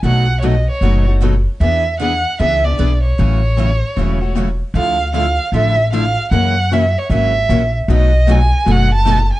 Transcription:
X:1
M:4/4
L:1/16
Q:"Swing" 1/4=153
K:Dlyd
V:1 name="Violin"
f3- f/2 c/2 ^d2 c4 z6 | e4 f4 e2 d4 c2- | c12 z4 | =f4 f4 e4 f4 |
f4 e2 c2 e6 z2 | ^d4 g4 f2 a4 g2 |]
V:2 name="Steel-string acoustic guitar"
[B,,F,A,^DFB]2 z2 [B,,F,A,DFB]2 z2 [B,,F,A,DFB]2 z2 [B,,F,A,DFB]2 z2 | [E,B,DGB]2 z2 [E,B,DGB]2 z2 [E,B,DGB]2 z2 [E,B,DGB]2 z2 | [C,F,CE]2 z2 [C,F,CE]2 z2 [C,F,CE]2 z2 [C,F,CE]2 z2 | [D,=F,EA]2 z2 [D,F,EA]2 z2 [D,F,EA]2 z2 [D,F,EA]2 z2 |
[F,CE^A]2 z2 [F,CEA]2 z2 [F,CEA]2 z2 [F,CEA]2 z2 | [B,,F,A,^DFB]2 z2 [B,,F,A,DFB]2 z2 [B,,F,A,DFB]2 z2 [B,,F,A,DFB]2 z2 |]
V:3 name="Steel-string acoustic guitar"
[B,,F,A,^DF]2 z2 [B,,F,A,DF]2 z2 [B,,F,A,DF]2 [A,DF]2 [B,,F,A,DF]2 z2 | [E,B,DG]2 z2 [E,B,DG]2 z2 [E,B,DG]2 [B,DG]2 [E,B,DG]2 z2 | [C,E,A,CF]2 z2 [C,E,A,CF]2 z2 [C,E,A,CF]2 [A,CF]2 [C,E,A,CF]2 z2 | [D,=F,A,E]2 z2 [D,F,A,E]2 z2 [D,F,A,E]2 z2 [D,F,A,E]2 z2 |
[C,E,^A,CF]2 z2 [C,E,A,CF]2 z2 [C,E,A,CF]2 z2 [C,E,A,CF]2 z2 | [B,,F,A,^DF]2 z2 [B,,F,A,DF]2 z2 [B,,F,A,DF]2 z2 [B,,F,A,DF]2 z2 |]
V:4 name="Upright bass" clef=bass
B,,,8 F,,,8 | E,,8 C,,4 B,,,4 | A,,,8 E,,,8 | D,,8 A,,,8 |
F,,8 G,,,4 ^A,,,4 | B,,,8 F,,,8 |]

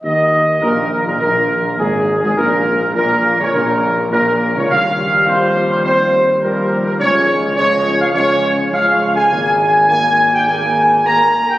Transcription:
X:1
M:4/4
L:1/16
Q:1/4=104
K:Ab
V:1 name="Trumpet section"
e4 B3 B B4 A3 A | B4 B3 d B4 B3 d | f4 c3 c c4 B3 B | d4 d3 f d4 f3 a- |
a4 a3 g a4 b3 g |]
V:2 name="French horn section"
E4 B,3 B, B,4 A,3 A, | B,4 B,3 D B,4 B,3 D | F4 C3 C C4 B,3 B, | D4 D3 F D4 F3 A- |
A4 A3 G A4 B3 G |]
V:3 name="Trombone section" clef=bass
E,4 B,,3 B,, B,,4 A,,3 A,, | B,,4 B,,3 D, B,,4 B,,3 D, | [F,G,]12 [F,G,]4 | [F,A,]4 [F,A,]4 [F,A,]4 [F,A,]4 |
[E,B,]4 [E,B,]4 [E,B,]4 [E,B,]4 |]
V:4 name="Tuba" clef=bass
E,,4 B,,,3 B,,, B,,,4 A,,,3 A,,, | B,,,4 B,,,3 D,, B,,,4 B,,,3 D,, | E,,16 | D,,16 |
A,,,12- A,,,2 z2 |]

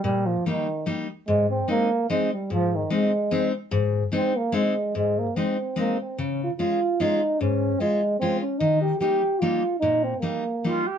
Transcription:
X:1
M:3/4
L:1/8
Q:"Swing" 1/4=147
K:Ab
V:1 name="Flute"
z6 | z6 | z6 | z6 |
z6 | z6 | z6 | z6 |
z4 F G |]
V:2 name="Euphonium"
G, F, E,2 z2 | A, C B,2 A, G, | F, E, A,3 z | z2 C B, A,2 |
A, B, C2 B, C | D F F2 E2 | D2 A,2 C D | E G G2 F2 |
E C B,3 z |]
V:3 name="Steel-string acoustic guitar"
B,,2 [G,B,E] z [G,B,E] z | A,,2 [A,CE] z [A,CE] z | A,,2 [A,CE] z [A,CE] z | A,,2 [A,CE] z [A,CE] z |
A,,2 [A,CE] z [A,CE] z | D,2 [A,DF] z [A,DF] z | A,,2 [A,DF] z [A,DF] z | E,2 [G,B,E] z [G,B,E] z |
B,,2 [G,B,E] z [G,B,E] z |]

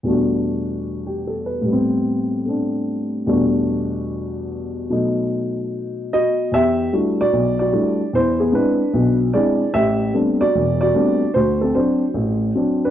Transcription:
X:1
M:4/4
L:1/16
Q:"Swing" 1/4=149
K:Em
V:1 name="Upright piano"
z8 z2 G2 A2 B2- | B z12 z3 | z16 | z12 [F^d]4 |
[Ge]4 z2 [Fd]4 [Fd]6 | [Ec]2 [B,^G]2 [DB]6 z2 [Gd]4 | [Ge]4 z2 [Fd]4 [Fd]6 | [Fc]2 [CA]2 [Fc]6 z4 [DB]2 |]
V:2 name="Upright piano"
[E,,B,,G,A,DF]16 | [A,,G,B,C]8 [A,CD]8 | [E,,B,,G,A,DF]16 | [B,,F,A,^D]16 |
E,,4 [G,A,DEF]2 z2 B,,,4 [G,A,DEF]2 z2 | E,,4 [^G,CDE]2 z2 [B,,,B,,]4 [G,CDE]2 z2 | A,,,4 [G,A,B,CD]2 z2 E,,,4 [G,A,B,CD]2 z2 | D,,4 [F,CD]2 z2 [A,,,A,,]4 [F,CD]2 z2 |]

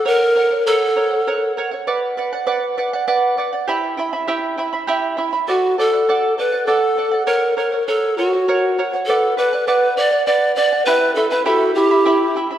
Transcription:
X:1
M:6/8
L:1/16
Q:3/8=67
K:F#phr
V:1 name="Charango"
[^Acf]2 [Acf] [cf] [Acf]2 [Acf] [cf] [Acf]2 [Acf] [cf] | [Bdf]2 [Bdf] [df] [Bdf]2 [Bdf] [df] [Bdf]2 [Bdf] [df] | [EGegb]2 [Eegb] [Eeb] [EGegb]2 [Eegb] [Eeb] [EGegb]2 [Eegb] [Eeb] | [Adf]2 [Adf] [df] [Adf]2 [Adf] [df] [Adf]2 [Adf] [df] |
[^Acf]2 [Acf] [cf] [Acf]2 [Acf] [cf] [Acf]2 [Acf] [cf] | [Bdf]2 [Bdf] [df] [Bdf]2 [Bdf] [df] [Bdf]2 [Bdf] [df] | [EGegb]2 [Eegb] [Eeb] [EGegb]2 [Eegb] [Eeb] [EGegb]2 [Eegb] [Eeb] |]
V:2 name="Pan flute"
^A4 =A6 z2 | z12 | z12 | F2 A4 B2 A4 |
^A2 A2 =A2 F4 z2 | A2 B2 B2 d2 d2 d2 | B2 A B A2 G4 z2 |]
V:3 name="Quena"
z12 | z12 | z12 | z12 |
z12 | z12 | z4 F2 E4 z2 |]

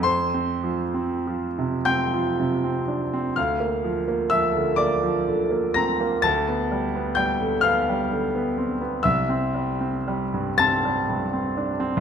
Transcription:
X:1
M:12/8
L:1/16
Q:3/8=42
K:F
V:1 name="Grand piano"
[cc']6 [gg']6 [ff']4 [ee']2 [dd']4 [bb']2 | [aa']4 [gg']2 [ff']6 [ee']6 [aa']6 |]
V:2 name="Grand piano" clef=bass
F,, C F, C F, C, C F, C, C D C D,, B, F, B, F, D, B, F, D, B, C B, | D,, =B, G, B, G, D, B, G, D, B, C B, C,, C G, C G, G,, C G, G,, C D C |]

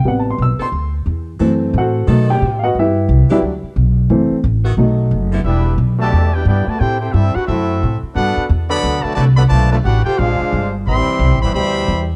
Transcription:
X:1
M:4/4
L:1/8
Q:"Swing" 1/4=178
K:Em
V:1 name="Trumpet section"
z8 | z8 | z8 | z8 |
[DGBe]2 z [Gdea]2 [EBdg] [EBdg] [FBda] | [EAcg] [EAcg] [CGAe] [DGBf] [CFAe]3 z | [DABf]2 z [Adfb]2 [FBda] [FBda] [Adfb] | [=FBda] [FBda] [DGB^f] [=FAcg] [D^G^B^e]3 z |
[Gebc']3 [Gceb] [Gceb]3 z |]
V:2 name="Upright piano"
(3f a c' e' c'2 z3 | z2 [FAcf]3 [Gg]2 [FB^d=f^f] | [EGBe]3 [EGBe] z4 | z8 |
z8 | z8 | z8 | z8 |
z8 |]
V:3 name="Upright piano"
[C,G,B,]3 z4 z | [E,A,C]3 z [F,A,^D] z3 | z3 [F,G,D] z4 | [E,A,C] z3 [F,A,^D]3 z |
z8 | z8 | z8 | z8 |
z8 |]
V:4 name="Saxophone section"
z3 [G,B,CA] z4 | [F,CEA] z3 [^D,B,^DA]3 z | z3 [E,B,DG] z4 | z3 [^D,A,B,F] z3 [=D,G,B,E] |
z8 | z8 | z8 | z8 |
z8 |]
V:5 name="Trombone section"
z8 | z8 | z8 | z8 |
[G,B,E]2 z [B,,D,A,]2 [B,DG] [B,DG] A, | [CEG] [CEG] [G,CE] F [A,CE]3 z | [B,DF]2 z [D,F,B,]2 [D,F,A,] [D,F,A,] [D,F,B,] | [D,=F,A,] [D,F,A,] ^F G [^G,D^E]3 z |
[E,G,C]3 [E,G,B,] [B,,E,G,]3 z |]
V:6 name="Upright bass" clef=bass
A,,,2 B,,, z D,,2 E,,2 | F,,2 A,,2 B,,2 A,,2 | G,,2 C,, z D,, z B,,,2 | F,,, z A,,,2 B,,,2 F,,,2 |
E,,,2 B,,,2 E,,2 G,, z | A,,2 G,, z F,,2 A,, z | G,, z E,,2 D,, z C,,2 | B,,,2 A,,, z ^A,,, z G,,,2 |
A,,, z (3C,, A,,, G,,, D,,2 E,,2 |]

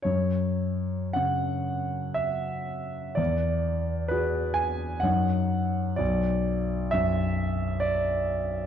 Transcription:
X:1
M:3/4
L:1/8
Q:1/4=63
K:Bmix
V:1 name="Grand piano"
c2 f2 e2 | =d2 B g f2 | =d2 e2 d2 |]
V:2 name="Grand piano" clef=bass
F,,2 C,4 | E,,2 [FG]2 [F,,Dc]2 | B,,,2 F,,4 |]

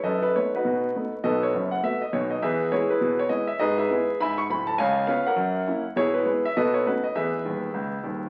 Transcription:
X:1
M:4/4
L:1/8
Q:"Swing" 1/4=203
K:E
V:1 name="Grand piano"
[ABd] B c [DFB]4 z | [ABd] c2 f e d c d | [GBe]2 [EGc] [EGB]2 c d e | [GBd] [GBe]3 [egb] c' b a |
[c^eg]2 [Bce] [^Acf]4 z | [EGc] [EGB]2 e [ABd] c [DFB] d | [GBe]6- [GBe] z |]
V:2 name="Grand piano" clef=bass
F,,2 [A,B,D]2 B,,2 [A,B,D]2 | [B,,,B,,]2 [F,,,F,,]2 [A,B,F]2 [B,,,B,,]2 | E,,2 [G,B,]2 B,,2 [G,B,E]2 | G,,2 [G,B,E]2 G,,2 [=D,,,=D,,]2 |
C,,2 [B,C^E]2 F,,2 [^A,C=E]2 | B,,2 [G,B,E]2 B,,2 [A,B,C]2 | E,,2 [D,,,D,,]2 C,,2 [D,,,D,,]2 |]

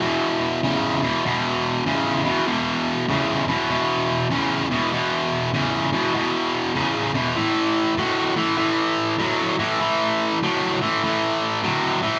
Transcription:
X:1
M:4/4
L:1/8
Q:"Swing" 1/4=98
K:A
V:1 name="Distorted electric guitar" clef=bass
[E,,B,,]2 [E,,C,] [E,,B,,] [E,,B,,]2 [E,,C,] [E,,B,,] | [E,,B,,]2 [E,,C,] [E,,B,,] [E,,B,,]2 [E,,C,] [E,,B,,] | [E,,B,,]2 [E,,C,] [E,,B,,] [E,,B,,]2 [E,,C,] [E,,B,,] | [A,,E,]2 [A,,F,] [A,,E,] [A,,E,]2 [A,,F,] [A,,E,] |
[A,,E,]2 [A,,F,] [A,,E,] [A,,E,]2 [A,,F,] [A,,E,] |]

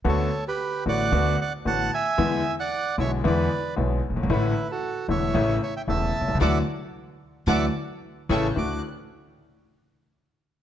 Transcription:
X:1
M:4/4
L:1/16
Q:1/4=113
K:D
V:1 name="Violin section"
z16 | z16 | z16 | [fad']2 z6 [fad']2 z4 [gac']2 |
f'2 z12 z2 |]
V:2 name="Bandoneon"
[Ac]3 [GB]3 [df]4 [df]2 [fa]2 [e^g]2- | [e^g]3 [df]3 [ce]2 [Bd]4 z4 | [EB]3 [FA]3 [ce]4 [ce] [eg] [ea]4 | [def]2 z6 [def]2 z4 [Ace]2 |
d'2 z12 z2 |]
V:3 name="Grand piano" clef=bass
[D,,D,A,B,F]2 z4 [A,,,A,,D,A,B,F]2 [D,,D,A,B,F]2 z2 [A,,,A,,D,A,B,F]2 z2 | [E,,D,E,^G,B,E]2 z4 [B,,,B,,D,G,B,E]2 [E,,D,E,G,B,E]2 z2 [B,,,B,,D,G,B,E]2 z/2 F,,,/2 =G,,,/2 ^G,,,/2 | [A,,,A,,D,E,A,E]2 z4 [E,,,E,,D,E,A,E]2 [A,,,A,,C,E,A,E]2 z2 [E,,,E,,C,E,A,E]2 z/2 B,,,/2 =C,,/2 ^C,,/2 | [D,E,F,]2 z6 [D,E,F,]2 z4 [A,,C,E,]2 |
[D,,DEF]2 z12 z2 |]
V:4 name="Upright bass" clef=bass
D,,3/2 z4 z/2 A,,,3/2 z/2 D,,3/2 z2 z/2 A,,,3/2 z2 z/2 | E,,3/2 z4 z/2 B,,,3/2 z/2 E,,3/2 z2 z/2 B,,,3/2 z F,,,/2 G,,,/2 ^G,,,/2 | A,,,3/2 z4 z/2 E,,,3/2 z/2 A,,,3/2 z2 z/2 E,,,3/2 z B,,,/2 =C,,/2 ^C,,/2 | D,,3/2 z6 z/2 D,,3/2 z4 z/2 A,,,3/2 z/2 |
D,,2 z12 z2 |]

